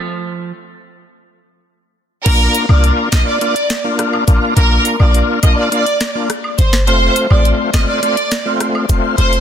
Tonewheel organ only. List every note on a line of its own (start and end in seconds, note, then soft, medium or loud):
2.26 2.66 A#3 medium
2.26 2.66 D4 medium
2.26 2.66 F4 medium
2.69 3.09 A#3 medium
2.69 3.09 D4 medium
2.69 3.09 F4 medium
3.12 3.39 A#3 medium
3.12 3.39 D4 medium
3.12 3.39 F4 medium
3.41 3.55 A#3 medium
3.41 3.55 D4 medium
3.41 3.55 F4 loud
3.84 4.24 A#3 medium
3.84 4.24 D4 medium
3.84 4.24 F4 medium
4.27 4.54 A#3 medium
4.27 4.54 D4 medium
4.27 4.54 F4 medium
4.56 4.96 A#3 medium
4.56 4.96 D4 medium
4.56 4.96 F4 loud
4.99 5.39 A#3 medium
4.99 5.39 D4 medium
4.99 5.40 F4 medium
5.43 5.69 A#3 medium
5.43 5.70 D4 medium
5.43 5.70 F4 medium
5.71 5.85 A#3 medium
5.71 5.86 D4 medium
5.71 5.86 F4 loud
6.15 6.29 A#3 medium
6.15 6.29 D4 medium
6.15 6.29 F4 medium
6.87 7.27 A3 medium
6.87 7.27 C4 medium
6.87 7.27 F4 loud
7.30 7.70 A3 medium
7.30 7.70 C4 medium
7.30 7.71 F4 medium
7.74 8.00 A3 medium
7.74 8.00 C4 medium
7.74 8.01 F4 medium
8.02 8.16 A3 medium
8.02 8.16 C4 medium
8.02 8.17 F4 loud
8.46 8.86 A3 medium
8.46 8.86 C4 medium
8.46 8.86 F4 medium
8.89 9.16 A3 medium
8.89 9.16 C4 medium
8.89 9.16 F4 medium
9.18 9.40 A3 medium
9.18 9.40 C4 medium
9.18 9.40 F4 loud